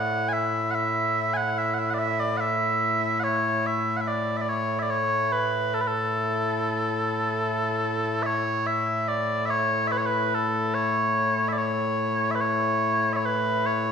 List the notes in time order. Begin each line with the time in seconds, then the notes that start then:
Already playing: A2 A3 E4 F#5
0.29 G#5
0.33 E5
0.71 E5 F#5
1.34 F#5 G#5
1.58 E5
1.74 F#5
1.79 E5
1.90 D5 F#5
1.98 E5
2.20 D5
2.37 E5 F#5
3.20 C#5 F#5
3.66 E5
3.97 F#5
4.01 E5
4.08 D5
4.37 E5
4.41 D5
4.49 C#5
4.79 D5 E5
4.90 C#5
5.32 B4
5.74 A4
5.81 B4
5.87 A4
8.23 C#5 E5
8.67 E5
9.08 D5
9.46 E5
9.50 C#5
9.87 E5
9.92 B4
9.98 C#5
10.06 B4
10.34 A4
10.74 C#5
11.48 E5
11.53 D5
11.58 C#5
12.31 E5
12.35 B4
12.41 C#5
13.13 C#5 E5
13.25 B4
13.66 C#5